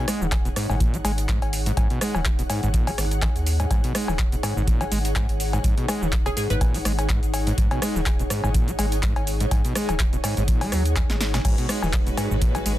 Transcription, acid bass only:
0.08 0.23 G#3 medium
0.21 0.27 D#3 loud
0.45 0.49 B2 medium
0.56 0.67 G#2 medium
0.69 0.75 G#2 loud
0.80 0.95 A#2 medium
0.94 0.97 G#3 medium
1.04 1.12 G#3 medium
1.29 1.40 G#2 loud
1.66 1.72 G#2 loud
1.77 1.88 G#2 medium
1.91 2.00 B2 medium
2.02 2.16 G#3 medium
2.15 2.21 D#3 loud
2.39 2.43 B2 medium
2.50 2.61 G#2 medium
2.63 2.69 G#2 loud
2.74 2.89 A#2 medium
2.87 2.91 G#3 medium
2.98 3.05 G#1 medium
3.22 3.30 D#3 loud
3.60 3.66 G#2 medium
3.71 3.82 G#2 medium
3.84 3.93 B2 medium
3.95 4.10 G#3 medium
4.08 4.14 D#3 loud
4.32 4.36 B2 medium
4.43 4.54 G#2 medium
4.57 4.63 G#2 loud
4.67 4.82 A#2 medium
4.81 4.84 G#3 medium
4.91 4.99 G#3 medium
5.16 5.27 G#2 loud
5.53 5.59 G#2 loud
5.64 5.75 G#2 medium
5.77 5.86 B2 medium
5.88 6.03 G#3 medium
6.02 6.08 D#3 loud
6.26 6.30 B2 medium
6.37 6.48 G#2 medium
6.50 6.56 G#2 loud
6.61 6.76 A#2 medium
6.75 6.78 G#3 medium
6.85 6.93 G#3 medium
7.10 7.21 G#2 loud
7.47 7.53 G#2 loud
7.58 7.69 G#2 medium
7.71 7.80 B2 medium
7.82 7.97 G#3 medium
7.95 8.01 D#3 loud
8.20 8.23 B2 medium
8.30 8.41 G#2 medium
8.44 8.50 G#2 loud
8.55 8.69 A#2 medium
8.68 8.71 G#3 medium
8.79 8.86 G#3 medium
9.03 9.14 G#2 loud
9.41 9.46 G#2 loud
9.52 9.62 G#2 medium
9.65 9.74 B2 medium
9.76 9.90 G#3 medium
9.89 9.95 D#3 loud
10.13 10.17 B2 medium
10.24 10.35 G#2 medium
10.37 10.43 G#2 loud
10.48 10.63 A#2 medium
10.62 10.74 G#3 medium
10.72 10.83 F#3 loud
10.97 11.01 G#2 medium
11.10 11.16 G#3 medium
11.34 11.40 B2 loud
11.45 11.56 G#2 medium
11.58 11.67 B2 medium
11.69 11.84 G#3 medium
11.82 11.88 D#3 loud
12.07 12.10 B2 medium
12.18 12.29 G#2 medium
12.31 12.37 G#2 loud
12.42 12.57 A#2 medium
12.55 12.59 G#3 medium
12.66 12.73 G#3 medium

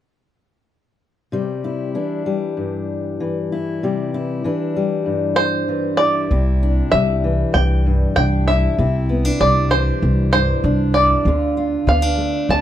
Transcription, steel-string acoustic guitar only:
1.32 1.95 C3 medium
1.32 2.26 G3 soft
1.64 3.52 E4 soft
1.95 3.20 E3 soft
1.95 3.86 D4 soft
2.26 3.83 G3 soft
2.57 3.78 G2 soft
3.20 4.44 E3 medium
3.52 4.13 E4 soft
3.83 4.45 C3 medium
3.83 4.75 G3 soft
4.14 5.99 E4 medium
4.44 5.67 E3 medium
4.44 6.27 D4 soft
4.76 6.93 G3 soft
5.06 6.26 G2 soft
5.69 6.27 E3 medium
6.00 6.30 E4 medium
6.31 7.24 C3 medium
6.31 8.47 E4 medium
6.63 8.17 D4 medium
6.94 9.39 G3 soft
7.24 8.75 E3 medium
7.86 8.75 G2 medium
8.18 8.81 D4 medium
8.48 8.78 E4 medium
8.78 9.71 C3 medium
8.78 10.94 E4 medium
9.09 9.25 B3 soft
9.25 10.64 D4 soft
9.40 11.26 G3 medium
9.71 11.22 E3 medium
10.33 11.22 G2 medium
10.65 11.87 D4 medium
10.96 11.26 E4 medium
11.27 12.61 D3 medium
11.27 11.56 F4 medium
11.57 12.61 F4 medium
11.88 12.02 B3 medium
12.02 12.61 D4 soft
12.17 12.61 A3 medium

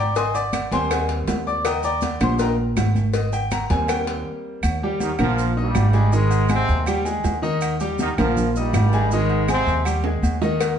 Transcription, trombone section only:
5.02 5.11 D#3 medium
5.02 5.10 D#4 medium
5.21 5.55 F3 loud
5.21 5.55 F4 medium
5.59 6.10 G2 medium
5.59 6.10 G3 loud
6.15 6.51 G#2 medium
6.15 6.51 G#3 loud
6.51 6.86 C3 medium
6.51 6.85 C4 loud
8.01 8.09 D#3 loud
8.01 8.09 D#4 medium
8.20 8.54 F3 loud
8.20 8.54 F4 medium
8.57 9.12 G2 medium
8.57 9.12 G3 medium
9.12 9.50 G#2 medium
9.12 9.49 G#3 loud
9.51 9.84 C3 loud
9.51 9.84 C4 loud

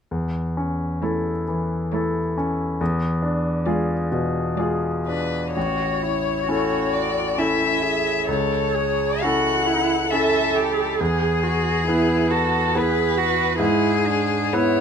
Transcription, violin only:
1.02 1.71 C#5 soft
1.92 2.59 C#5 soft
3.66 4.34 D5 soft
4.57 5.03 D5 soft
5.07 5.52 B4 soft
5.54 6.95 C#5 soft
6.93 7.40 D5 soft
7.38 8.27 E5 soft
8.28 9.23 C#5 medium
9.22 10.12 F#5 medium
10.11 10.57 E5 soft
10.56 11.00 G4 soft
11.00 12.32 G#4 medium
12.30 12.78 A4 medium
12.77 13.58 B4 medium
13.59 14.54 G#4 medium
14.53 14.80 C#5 medium

